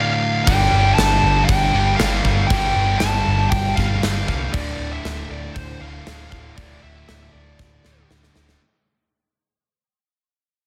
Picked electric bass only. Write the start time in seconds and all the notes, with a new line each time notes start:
0.48 G1
0.73 G1
0.98 G1
1.23 G1
1.49 G1
1.74 G1
2.00 G1
2.25 G1
2.51 G1
2.76 G1
3.02 G1
3.28 G1
3.52 G1
3.78 G1
4.04 G1
4.28 C2
4.54 D1
4.79 D1
5.05 D1
5.30 D1
5.56 D1
5.81 D1
6.07 D1
6.32 D1
6.58 D1
6.83 D1
7.09 D1
7.34 D1
7.59 D1
7.85 D1
8.11 D1
8.36 D1